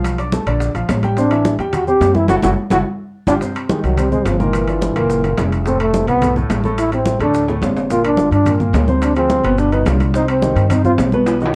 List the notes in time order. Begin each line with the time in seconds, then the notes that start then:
Already playing: B1 F3 F4 F5
0.04 high bongo, high conga, high timbale, maracas
0.18 D4 D5 D6, high bongo, high conga, high timbale, maracas
0.32 A3 A4 A5, high bongo, high conga, low timbale, maracas
0.47 A#1 D3 D4 D5, high bongo, high timbale, maracas
0.60 high bongo, high conga, maracas
0.74 A#1 F3 F4 F5, high bongo, high conga, high timbale, maracas
0.89 A1, high bongo, low bongo, high conga, high timbale, low timbale, maracas
1.03 G3 G4 G5, high conga, high timbale, maracas
1.17 C3 C4 D4 C5, high bongo, high conga, maracas
1.31 E3 E4 E5, high conga, high timbale, maracas
1.45 high bongo, high conga, low timbale, maracas
1.59 E2 G3 G4 G5, high conga, high timbale, maracas
1.73 F#4, high bongo, high conga, low conga, high timbale, maracas
1.87 C3 C4 G4 C5, high conga, maracas
2.01 F#2, high bongo, low bongo, high conga, high timbale, low timbale, maracas
2.15 E3 E4 E5, high conga, maracas
2.28 F#1 E4 F#4 A4, low bongo, high conga, high timbale, maracas
2.43 F#1 E4 F#4 A4, low bongo, high conga, high timbale, maracas
2.71 F#1 E4 F#4 A4, low bongo, high conga, high timbale, maracas
3.27 G1 D4 F4 G4, low bongo, high conga, high timbale, maracas
3.41 C3 C4 C5, high bongo, high conga, maracas
3.55 high conga, high timbale, maracas
3.69 D#3 G#3 D#4 G4, high bongo, high conga, low timbale, maracas
3.83 C2 F#3, high conga, high timbale, maracas
3.97 C3 G3 C4 C5, high bongo, high conga, low conga, high timbale, maracas
4.12 C3 G#3 C4 C5, high conga, low conga, maracas
4.25 G1 F3, high bongo, low bongo, high conga, high timbale, low timbale, maracas
4.40 A#2 D#3 A#3 A#4, high conga, maracas
4.53 E3, high bongo, high conga, high timbale, maracas
4.68 D3 D4 F4, high bongo, high conga, high timbale, maracas
4.82 high bongo, high conga, low timbale, maracas
4.96 F#1 A#2 A#3 A#4, high bongo, high timbale, maracas
5.10 high bongo, high conga, maracas
5.24 A#2 A#3 A#4, high bongo, high conga, high timbale, maracas
5.38 F1 C#3 C#4 E4, high bongo, low bongo, high conga, high timbale, low timbale, maracas
5.52 high timbale, maracas
5.66 A2 A3 C4 A4, high bongo, high conga, maracas
5.80 A3, high conga, high timbale, maracas
5.94 C3 C4 E4, high bongo, high conga, low timbale, maracas
6.08 C2 B3, high conga, high timbale, maracas
6.22 A2 A3 A4, high bongo, high conga, low conga, high timbale, maracas
6.36 A2 A3 A4, high conga, low conga, maracas
6.50 A1, high bongo, low bongo, high conga, high timbale, low timbale, maracas
6.64 A2 A3 A4, high conga, maracas
6.78 E4, high bongo, high conga, high timbale, maracas
6.92 C3 C4 E4, high bongo, high conga, high timbale, maracas
7.06 high bongo, high conga, low timbale, maracas
7.20 D2 A2 A3 D4 A4, high bongo, high timbale, maracas
7.34 high bongo, high conga, maracas
7.48 A2 A3 A4, high bongo, high conga, high timbale, maracas
7.62 G1 C3 C4 D4, high bongo, low bongo, high conga, low timbale, maracas
7.77 low timbale, maracas
7.90 A#2 A#3 F4 A#4, high bongo, high conga, maracas
8.04 D4, high conga, high timbale, maracas
8.17 D3 D4 F4, high bongo, high conga, low timbale, maracas
8.31 G2 D4, high conga, high timbale, maracas
8.46 A#2 A#3 A#4, high bongo, high conga, low conga, high timbale, maracas
8.60 A#2 A#3 A#4, high conga, low conga, maracas
8.73 D2, high bongo, low bongo, high conga, high timbale, low timbale, maracas
8.88 C3 C4 C5, high conga, maracas
9.02 D4, high bongo, high conga, high timbale, maracas
9.16 F3 C4 F4 G#4, high bongo, high conga, high timbale, maracas
9.30 high bongo, high conga, low timbale, maracas
9.43 G1 B2 B3 B4, high timbale, maracas
9.58 D4, high bongo, high conga, maracas
9.72 B2 B3 D#4 B4, high bongo, high conga, high timbale, maracas
9.86 C2 D3 D4 F4, high bongo, low bongo, high conga, high timbale, low timbale, maracas
10.00 high conga, high timbale, maracas
10.14 C3 C4 D#4 C5, high bongo, high conga, maracas
10.29 C4, high conga, high timbale, maracas
10.42 D#3 D#4 G4, high bongo, high conga, low timbale, maracas
10.56 G2, high conga, high timbale, maracas
10.70 C3 C4 D#4 C5, high bongo, high conga, low conga, high timbale, maracas
10.85 C3 C4 F4 C5, high conga, low conga, maracas
10.98 B1, high bongo, low bongo, high conga, high timbale, low timbale, maracas
11.12 B2 B3 B4, high conga, maracas
11.26 high bongo, high conga, high timbale, maracas
11.40 D#3 D#4 F#4, high bongo, high conga, maracas
11.45 high timbale